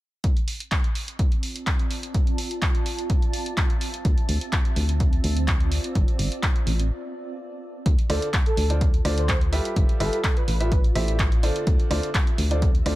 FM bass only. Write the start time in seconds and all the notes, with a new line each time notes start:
4.05 D2
4.29 D2
4.76 D2
5.24 D2
5.95 G1
6.19 G1
6.67 A1
7.86 D2
8.10 D2
8.57 D2
9.05 D2
9.76 G1
10.00 G1
10.48 A1
10.95 A1
11.67 D2
11.91 D2
12.38 D2
12.86 D2